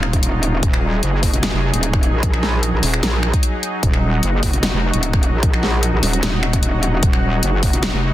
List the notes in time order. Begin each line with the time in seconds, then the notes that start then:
Already playing: D#1 F#3 D#4 F4
0.03 finger snap
0.13 kick, closed hi-hat
0.23 closed hi-hat
0.43 closed hi-hat
0.63 D#1 G#4, kick, closed hi-hat
0.73 finger snap
1.03 F#1, closed hi-hat
1.23 kick, open hi-hat
1.33 F1, closed hi-hat
1.43 snare, closed hi-hat
1.53 F1
1.73 D#1, closed hi-hat
1.83 closed hi-hat
1.94 finger snap, kick
2.03 closed hi-hat
2.13 A#1
2.23 kick, closed hi-hat
2.33 A#1, finger snap
2.43 snare
2.63 closed hi-hat
2.73 A#1
2.83 D#1, open hi-hat
2.94 finger snap, closed hi-hat
3.03 A#1, snare, closed hi-hat
3.23 finger snap
3.34 kick, closed hi-hat
3.43 closed hi-hat
3.63 closed hi-hat
3.83 D#1 F#4, kick, closed hi-hat
3.94 finger snap
4.23 F#1, closed hi-hat
4.43 kick, open hi-hat
4.53 F1, closed hi-hat
4.63 snare, closed hi-hat
4.74 F1
4.93 D#1, closed hi-hat
5.03 closed hi-hat
5.13 finger snap, kick
5.23 closed hi-hat
5.33 A#1
5.43 kick, closed hi-hat
5.53 A#1, finger snap
5.63 snare
5.83 closed hi-hat
5.93 A#1
6.03 D#1, open hi-hat
6.13 closed hi-hat
6.23 D#1, snare, closed hi-hat
6.43 finger snap
6.53 kick, closed hi-hat
6.63 closed hi-hat
6.83 closed hi-hat
7.03 D#1, kick, closed hi-hat
7.13 finger snap
7.43 F#1, closed hi-hat
7.63 kick, open hi-hat
7.73 F1, closed hi-hat
7.83 snare, closed hi-hat
7.93 F1